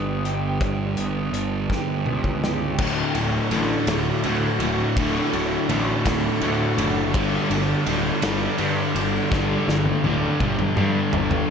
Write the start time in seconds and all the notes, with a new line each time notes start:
Already playing: G1 G2 D3 G3 B3 D4 G4
0.25 G4, closed hi-hat
0.60 G1 G2 D3 G3, kick, closed hi-hat
0.97 G1 B3, closed hi-hat
1.32 G1 D4, closed hi-hat
1.69 G1 G4, kick, snare
2.05 C#2 B3, mid tom
2.24 kick
2.43 G4, snare
2.78 D1 D2 A2 D3 A3 F#4, kick, crash
3.15 D1 D2 A2 D3 A3 F#4, ride
3.51 A1 D2 A2 D3, ride
3.87 D1 D2 A2 D3 A3 F#4, snare, ride
4.24 D2 A2 D3 A3 F#4, ride
4.60 D1 D2 A2 D3 A3 F#4, ride
4.96 D1 D2 A2 D3 A3 F#4, kick, ride
5.33 D1 D2 A2 D3 A3 F#4, ride
5.69 A1 D2 A2 D3, ride
6.05 D1 D2 A2 D3 A3 F#4, kick, snare, ride
6.41 D2 A2 D3 A3 F#4, ride
6.77 F#1 D2 A2 D3 A3 F#4, ride
7.14 G1 G2 D3 G3, kick, ride
7.50 G1 G2 D3, ride
7.86 D1 G2 D3 G3, ride
8.22 G1 G2 D3 G3, snare, ride
8.58 G2 D3 G3, ride
8.95 G1 G2 D3, ride
9.31 G1 G2 D3 G3, kick, snare
9.67 G1 G2 D3, snare
9.86 high tom
10.04 D1 G2 D3 G3, high tom
10.40 G1 G2 D3 G3, kick, mid tom
10.59 mid tom
10.76 G2 D3 G3, mid tom
11.12 G1 G2 D3, floor tom
11.31 floor tom